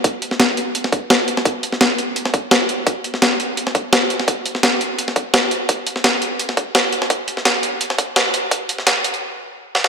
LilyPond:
\new DrumStaff \with { instrumentName = "Drums" } \drummode { \time 4/4 \tempo 4 = 170 <hh bd>8 hh16 sn16 <hh sn>8 hh8 hh16 sn16 <hh bd>8 <hh sn>8 hh16 sn16 | <hh bd>8 hh16 sn16 <hh sn>8 hh8 hh16 sn16 <hh bd>8 <hh sn>8 hh8 | <hh bd>8 hh16 sn16 <hh sn>8 hh8 hh16 sn16 <hh bd>8 <hh sn>8 hh16 sn16 | <hh bd>8 hh16 sn16 <hh sn>8 hh8 hh16 sn16 <hh bd>8 <hh sn>8 hh8 |
<hh bd>8 hh16 sn16 <hh sn>8 hh8 hh16 sn16 <hh bd>8 <hh sn>8 hh16 sn16 | <hh bd>8 hh16 sn16 <hh sn>8 hh8 hh16 sn16 <hh bd>8 <hh sn>8 hh8 | <hh bd>8 hh16 sn16 <hh sn>8 hh16 hh16 r4 r8 sn16 sn16 | }